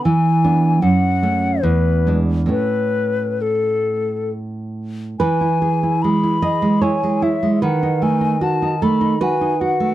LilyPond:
<<
  \new Staff \with { instrumentName = "Flute" } { \time 3/4 \key a \major \tempo 4 = 74 gis''4 fis''4 b'8 r8 | b'4 a'4 r4 | \key e \major gis''4 b''4 gis''8 e''8 | fis''8 gis''8 a''8 b''8 gis''8 fis''8 | }
  \new Staff \with { instrumentName = "Nylon-string guitar" } { \time 3/4 \key a \major << { r2. | r2. | \key e \major b'4. dis''8 cis''4 | b'4. a'8 b'4 | } \\ { e8 <b d'>8 fis,8 <a cis'>8 e,8 <gis d'>8 | <a, a cis'>2. | e16 e'16 gis'16 e'16 gis16 e'16 gis'16 gis16 e'16 gis16 e'16 gis16 | dis16 dis'16 a16 dis'16 fis'16 dis'16 a16 dis'16 fis'16 dis'16 fis'16 a16 | } >> }
>>